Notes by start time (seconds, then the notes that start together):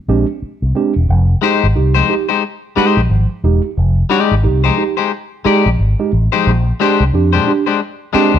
0.08 A#1 G#3 C4 D4 G4
0.42 muted fingered electric bass stroke
0.62 C2
0.75 G#3 C4 D4 G4
0.96 E1
1.09 F1 F3
1.42 G#3 D#4 G4 C5
1.64 G#1
1.76 C2 D#4 G4
1.95 F3 G#3 D#4 G4 C5
2.09 D#4 G4
2.29 G#3 D#4 G4 C5
2.76 G#3 D#4 G4 C5, muted fingered electric bass stroke
2.97 A#1
3.10 G#1 F3
3.44 E1 G#3 D#4 G4
3.64 D#4 G4
3.77 F1 F3
4.10 G#3 D#4 G4 D5
4.31 G#1
4.44 C2 D#4 G4
4.64 F3 G#3 D#4 G4 C5
4.78 D#4 G4
4.97 G#3 D#4 G4 C5
5.45 G#3 D#4 G4 D5, muted fingered electric bass stroke
5.66 A#1
5.79 G#1
6.00 G#3 D#4 G4
6.13 A1
6.32 F3 G#3 D#4 G4 C5
6.47 A#1 A#2 F3
6.80 G#3 D4 G4 C5
7.00 C2
7.13 F2 D4 G4
7.33 A#2 F3 G#3 D4 G4 C5
7.47 D4 G4
7.66 G#3 D4 G4 C5
8.13 G#3 C4 D4 G4 C5, muted fingered electric bass stroke
8.34 D2